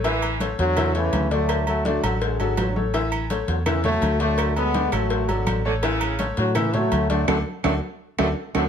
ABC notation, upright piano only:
X:1
M:4/4
L:1/8
Q:1/4=166
K:A
V:1 name="Upright piano"
[E,Ee]2 [A,Ac]2 [E,Ee] [A,Ac]2 [D,Dd]- | [D,Dd] [F,FA] [D,Dd] [F,FA]2 [F,FA]2 [A,Ac] | [E,Ee]2 [A,Ac]2 [E,Ee] [A,Ac]2 [D,Dd]- | [D,Dd] [F,FA] [D,Dd] [F,FA]2 [F,FA]2 [A,Ac] |
[E,Ee]2 [A,Ac]2 [E,Ee] [A,Ac]2 [D,Dd] | [DFA] z [DFA] z2 [DFA] z [DFA] |]